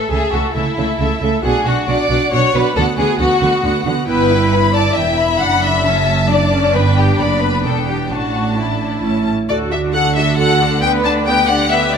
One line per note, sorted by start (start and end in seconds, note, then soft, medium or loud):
0.00 0.11 A4 soft
0.09 0.18 C#2 soft
0.09 0.19 C#3 soft
0.09 0.31 A3 soft
0.09 0.32 G#4 medium
0.09 0.31 A4 soft
0.09 0.30 E5 soft
0.31 0.40 C#2 soft
0.31 0.41 C#3 soft
0.31 0.54 A3 soft
0.31 0.55 F#4 medium
0.31 0.54 A4 soft
0.31 0.53 E5 soft
0.54 0.63 C#2 soft
0.54 0.63 C#3 soft
0.54 0.76 A3 soft
0.54 1.20 E4 medium
0.54 0.76 A4 soft
0.54 0.75 E5 soft
0.76 0.85 C#2 soft
0.76 0.85 C#3 soft
0.76 0.98 A3 soft
0.76 0.98 A4 soft
0.76 0.98 E5 soft
0.99 1.07 C#2 soft
0.99 1.08 C#3 soft
0.99 1.20 A3 soft
0.99 1.20 A4 soft
0.99 1.20 E5 soft
1.21 1.29 C#2 soft
1.21 1.30 C#3 soft
1.21 1.43 A3 soft
1.21 1.43 A4 soft
1.21 1.43 E5 soft
1.43 1.51 B1 soft
1.43 1.52 B2 soft
1.43 1.65 D4 soft
1.43 1.65 F#4 soft
1.43 1.64 G#4 medium
1.43 1.64 F#5 soft
1.65 1.74 B1 soft
1.65 1.74 B2 soft
1.65 1.87 D4 soft
1.65 1.88 F#4 medium
1.65 1.87 F#4 soft
1.65 1.86 F#5 soft
1.87 1.95 B1 soft
1.87 1.96 B2 soft
1.87 2.09 D4 soft
1.87 2.09 F#4 soft
1.87 2.32 D5 medium
1.87 2.09 F#5 soft
2.09 2.17 B1 medium
2.09 2.18 B2 soft
2.09 2.31 D4 soft
2.09 2.31 F#4 soft
2.09 2.30 F#5 soft
2.31 2.40 B1 medium
2.31 2.40 B2 soft
2.31 2.53 D4 soft
2.31 2.54 F#4 soft
2.31 2.54 C#5 medium
2.31 2.52 F#5 soft
2.53 2.62 B1 soft
2.53 2.62 B2 medium
2.53 2.76 D4 soft
2.53 2.75 F#4 soft
2.53 2.76 B4 medium
2.53 2.75 F#5 soft
2.76 2.84 D2 medium
2.76 2.84 D3 medium
2.76 2.97 B3 medium
2.76 2.97 F#4 medium
2.76 2.84 A4 medium
2.76 2.97 F#5 medium
2.97 3.06 D2 medium
2.97 3.07 D3 soft
2.97 3.20 B3 medium
2.97 3.20 F#4 soft
2.97 3.19 G#4 medium
2.97 3.18 F#5 soft
3.19 3.27 D2 medium
3.19 3.28 D3 medium
3.19 3.41 B3 soft
3.19 3.85 F#4 medium
3.19 3.41 F#4 soft
3.19 3.41 F#5 medium
3.41 3.49 D2 medium
3.41 3.50 D3 medium
3.41 3.62 B3 soft
3.41 3.63 F#4 soft
3.41 3.62 F#5 soft
3.63 3.71 D2 medium
3.63 3.71 D3 medium
3.63 3.84 B3 soft
3.63 3.85 F#4 soft
3.63 3.85 F#5 medium
3.85 3.93 D2 medium
3.85 3.94 D3 soft
3.85 4.06 B3 soft
3.85 4.08 F#4 soft
3.85 4.08 F#5 soft
4.08 4.92 G1 medium
4.08 4.92 G2 medium
4.08 4.28 B3 medium
4.08 4.29 E4 medium
4.08 4.70 B4 medium
4.08 4.49 G5 medium
4.31 4.95 E4 medium
4.52 4.74 B5 medium
4.73 4.96 D5 medium
4.73 4.97 A5 medium
4.95 5.40 E1 medium
4.95 5.40 E2 medium
4.95 5.40 E4 soft
4.95 5.40 E5 medium
4.95 5.19 G5 medium
5.19 5.85 B5 soft
5.41 6.74 F#1 medium
5.41 6.74 F#2 medium
5.41 5.85 D4 soft
5.41 5.63 F#5 medium
5.62 6.28 E5 medium
5.85 6.29 C#4 soft
5.85 6.74 A5 soft
6.29 8.07 D4 medium
6.29 6.74 D5 medium
6.52 6.74 C#4 soft
6.74 7.19 G1 soft
6.74 7.19 G2 soft
6.74 7.18 B3 soft
6.74 6.97 B4 medium
6.74 7.19 G5 soft
6.97 7.19 G4 medium
7.18 7.63 F#1 soft
7.18 7.64 F#2 soft
7.18 8.09 B3 soft
7.18 7.42 D5 medium
7.18 7.64 B5 soft
7.42 7.65 B4 medium
7.64 8.10 E1 soft
7.64 8.10 E2 soft
7.64 7.88 A4 medium
7.64 8.09 G5 soft
7.88 8.10 G4 soft
8.10 9.01 A1 soft
8.10 9.02 A2 soft
8.10 9.03 D4 soft
8.10 8.57 F#4 medium
8.10 9.02 A5 soft
8.57 9.26 E4 soft
9.03 9.28 A1 soft
9.03 9.28 A2 soft
9.03 9.29 C#4 soft
9.03 9.29 E4 soft
9.03 9.28 A5 soft
9.49 11.98 D2 soft
9.49 11.98 D3 soft
9.49 9.70 F#4 soft
9.49 9.70 A4 soft
9.49 9.57 D5 medium
9.71 9.94 D4 soft
9.71 9.93 F#4 soft
9.71 9.79 E5 medium
9.94 10.15 F#4 soft
9.94 10.16 A4 soft
9.94 10.79 A4 medium
9.94 10.15 F#5 medium
10.16 10.38 D4 soft
10.16 10.37 F#4 soft
10.16 10.38 E5 medium
10.38 10.59 F#4 soft
10.38 10.59 A4 soft
10.38 10.82 F#5 medium
10.61 10.83 D4 soft
10.61 10.83 F#4 soft
10.82 11.03 B3 soft
10.82 11.03 B4 soft
10.82 11.27 B4 medium
10.82 10.90 G5 medium
11.04 11.27 D4 soft
11.04 11.27 D5 soft
11.04 11.12 A5 medium
11.26 11.49 B3 soft
11.26 11.98 G4 medium
11.26 11.49 B4 soft
11.26 11.48 G5 medium
11.48 11.71 D4 soft
11.48 11.71 D5 soft
11.48 11.71 F#5 medium
11.70 11.92 B3 soft
11.70 11.92 B4 soft
11.70 11.93 E5 medium
11.93 11.98 D4 soft
11.93 11.98 D5 medium
11.93 11.98 D5 soft